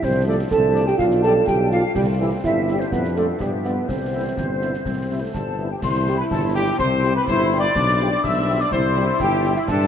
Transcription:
0.03 C2 F3 C4 D4 C5, concert bass drum, snare
0.27 F3 A3 D4 A4 D5
0.51 C2 A4 A5, concert bass drum, snare
0.75 F3 A3 D4 D5, snare
0.87 G4 G5, snare
0.98 B1 G3 F4 F5, concert bass drum, snare
1.11 snare
1.23 G3 D4 G4 A4 D5 A5, snare
1.47 B1 G4 G5, concert bass drum, snare
1.71 G3 D4 F4 G4 D5 F5, snare
1.95 C2 G3 C4 G4, concert bass drum, snare, crash
2.19 E3 G3 C4 E4 G4 E5
2.44 G1 G3 C4 E4 E5, concert bass drum, snare
2.68 G3 C4 G4 E5, snare
2.79 C4 C5, snare
2.91 F2 F3 B3 D4 B4, concert bass drum, snare
3.05 snare
3.16 A3 D4 F4 A4 D5, snare
3.40 G2 F3 G3 B3 G4, concert bass drum, snare
3.64 B3 D4 F4 B4 D5, snare
3.88 C2 E3 C4 C5, concert bass drum, snare
4.13 G3 C4 E4 E5
4.36 G1 E3, concert bass drum, snare
4.60 C3 G3 C4 E4 E5, snare
4.74 snare
4.85 C2 C4, concert bass drum, snare
5.10 G3 C4 E4 E5
5.21 A3
5.33 G1 G3 A4 A5, concert bass drum, snare
5.56 G3 B3 C4 E4 E5
5.70 G4 G5
5.82 C2 E4 C5 C6, concert bass drum, snare, crash
5.95 snare
6.07 G3 E4 G4, snare
6.18 B4 B5
6.30 G1 A4 A5, concert bass drum, snare
6.54 G3 E4 G4 G5
6.78 C2 C4 C5 C6, concert bass drum, snare
7.04 G3 E4 G4, snare
7.15 B4 B5
7.26 G1 E4 C5 C6, concert bass drum, snare
7.52 G3 E4 G4, snare
7.59 D5 D6
7.63 snare
7.75 B1 D4, concert bass drum, snare
7.88 snare
8.00 G3 F4 G4, snare
8.23 B1 E5 E6, concert bass drum, snare
8.49 G3 F4 G4
8.60 D5 D6
8.72 C2 E4 C5 C6, concert bass drum, snare
8.96 G3 E4 G4, snare
9.20 G1 G4 G5, concert bass drum, snare
9.44 G3 E4 G4, snare
9.56 E4 E5, snare
9.68 G2 D4 A4 A5, concert bass drum, snare, crash
9.80 snare

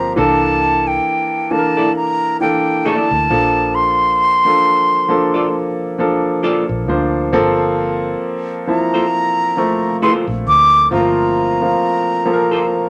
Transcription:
Already playing: G1 F3 A#3 C4 G4 C5 A#5
0.16 C2 E3 A#3 D4 A4 A5
0.87 G5
1.51 E3 A#3 D4 A4 A5
1.59 A#4
1.77 A#3 E4 A4 D5
1.96 A#5
2.40 E3 A#3 D4 A4 G5
2.85 A#3 E4 A4 D5 A5
3.11 D2
3.30 A#1 F3 A#3 D4 A4
3.75 C6
4.45 F3 A#3 D4 A4
5.08 F3 A#3 D4 A4
5.34 A#3 F4 A4 D5
5.98 F3 A#3 D4 A4
6.43 A#3 F4 A4 D5
6.69 A#1
6.88 D2 F3 A#3 D4 C5
7.33 G1 F3 A#3 C4 A4
8.67 F3 A#3 C4 E4 A#5
8.94 A#3 F4 A4 C5
9.57 F3 A3 A#3 C4
10.02 A#3 F4 A4 C5 C6
10.27 A#1
10.47 D2 D6
10.91 G1 F3 A3 C4 F4 A#5
10.98 A#3
11.61 F3 A#3 C4 F4
12.25 F3 A#3 C4 A4
12.33 A#4
12.51 A#3 F4 A4 C5

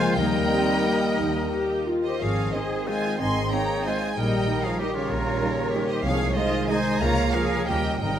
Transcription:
Already playing: C#3 F3 G#3 A#3 C#4 F4 A#4 C5 F5 G#5
0.00 F4
0.14 D#2 D#3 G3 A#3 D#4 A#4 D#5 G5
0.32 A#3
0.50 C4 D#4
0.85 A#3 D#4
1.18 D#2 D#3 D#4
1.34 A#3
1.51 D#4 G4
1.70 A#4
1.87 D#4 F4
2.03 D#3 G4 A#4 C5 D#5
2.20 G#1 G#2 D#3 F3 C4 G#4 C#5 F5
2.37 D#3
2.52 D#3 G#3 C4 D#4 G#4 C5 D#5
2.71 D#4
2.87 G#3 C4 D#4 F4 C5 D#5 G#5
3.04 D#4
3.19 G#1 G#2 C4 D#4 D#5 G#5 C6
3.35 D#3
3.51 G#3 A#3 C4 D#4 C#5 G5 A#5
3.69 D#4
3.84 G#3 C4 D#4 F4 C5 D#5 G#5
4.01 D#4
4.16 A#1 A#2 D#3 G3 D#4 A#4 D#5 G5
4.32 A#3
4.48 G3 D#4
4.64 F3 D#4 G#4 C#5 F5
4.79 D#3 G3 D#4 G4 A#4 D#5
4.95 C#3 D#4 F4 A#4 C#5
5.10 A#1 A#2 A#4
5.25 A#3
5.42 G3 D#4
5.58 D#4
5.74 G3 D#4 G4 A#4
5.89 D#3 D#4 G4 C5 D#5
6.04 C2 C3 D#3 F3 G#3 G#4 C#5 F5
6.19 C4
6.36 D#3 G#3 D#4 F4 G#4 C5 D#5
6.69 G#3 D#4 G#4 C5 D#5 G#5
6.86 D#4
7.01 C#2 C#3 F3 A#3 F4 C#5 F5 A#5
7.17 A#3
7.33 F3 C#4 G#4 A#4 C#5 F5
7.51 F4
7.68 D#2 D#3 F3 G3 C#4 G4 A#4 D#5 G5
7.85 F4 A#4
8.00 G#1 G#2 G3 D#4 A#4 D#5 G5
8.06 D#3 C4

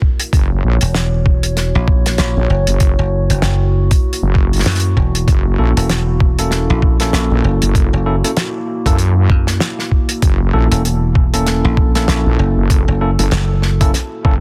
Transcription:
Already playing: A#3 E4 F#4 A#4
0.02 kick
0.20 closed hi-hat
0.32 F#1 C#5, kick, closed hi-hat
0.64 A#1
0.81 E1, closed hi-hat
0.95 snare, closed hi-hat
1.26 kick
1.43 closed hi-hat
1.57 snare, closed hi-hat
1.75 A#1
1.88 kick
2.06 snare, closed hi-hat
2.18 A#1, snare, closed hi-hat
2.37 A#1
2.50 F#1
2.67 F#1, closed hi-hat
2.80 kick, closed hi-hat
2.99 F#1
3.30 F#1, closed hi-hat
3.42 F#1, snare, closed hi-hat
3.91 kick, closed hi-hat
4.13 closed hi-hat
4.22 F#1
4.35 kick
4.53 closed hi-hat
4.56 snare, closed hi-hat
4.59 closed hi-hat
4.63 closed hi-hat
4.66 F#2, snare, closed hi-hat
4.71 closed hi-hat
4.75 snare, closed hi-hat
4.80 closed hi-hat
4.97 E1, kick
5.15 closed hi-hat
5.28 F#1, kick, closed hi-hat
5.59 A#1 A#3 C#4 E4 A4
5.77 E1 A#3 C#4 E4 A4, closed hi-hat
5.89 snare, closed hi-hat
6.20 kick
6.39 A#3 C#4 E4 A4, closed hi-hat
6.51 snare, closed hi-hat
6.70 A#1
6.82 kick
7.00 A#3 C#4 E4 A4, snare, closed hi-hat
7.13 A#1, snare, closed hi-hat
7.31 A#1
7.44 F#1
7.62 F#1, closed hi-hat
7.75 kick, closed hi-hat
7.93 F#1
8.06 A#3 C#4 E4 A4
8.24 A#3 C#4 E4 A4, closed hi-hat
8.37 snare, closed hi-hat
8.86 F#2 A#3 C#4 E4 A4, kick, closed hi-hat
8.99 closed hi-hat
9.30 F#2, kick
9.47 snare, closed hi-hat
9.60 snare, closed hi-hat
9.79 snare
9.91 kick
10.09 closed hi-hat
10.22 F#1 A4, kick, closed hi-hat
10.53 A#1 A#3 C#4 E4 A4
10.71 E1 A#3 C#4 E4 A4, closed hi-hat
10.85 closed hi-hat
11.15 kick
11.34 A#3 C#4 E4 A4, closed hi-hat
11.47 snare, closed hi-hat
11.64 A#1
11.77 kick
11.95 A#3 C#4 E4 A4, snare, closed hi-hat
12.08 A#1, snare, closed hi-hat
12.26 A#1
12.39 F#1
12.57 F#1
12.70 kick, closed hi-hat
12.88 F#1
13.01 A#3 C#4 E4 A4
13.19 F#1 A#3 C#4 E4 A4, closed hi-hat
13.31 F#1, snare, closed hi-hat
13.62 snare
13.81 A#3 C#4 E4 A4, kick, closed hi-hat
13.94 snare, closed hi-hat
14.25 F#1 A#3 C#4 E4 A4, kick

